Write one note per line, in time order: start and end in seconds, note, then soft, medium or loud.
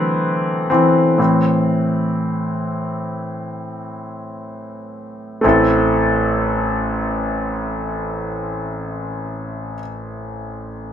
0.00 1.21 D3 soft
0.00 0.68 E3 medium
0.00 1.21 F#3 soft
0.00 1.21 A3 soft
0.00 0.68 C4 medium
0.70 1.18 E3 soft
0.70 1.18 C4 medium
1.18 5.40 A2 soft
1.18 5.40 E3 soft
1.18 5.41 C4 soft
5.41 9.76 A1 medium
5.41 9.73 A3 medium
5.41 9.75 C4 soft
5.46 9.77 E4 soft
5.46 9.80 A4 medium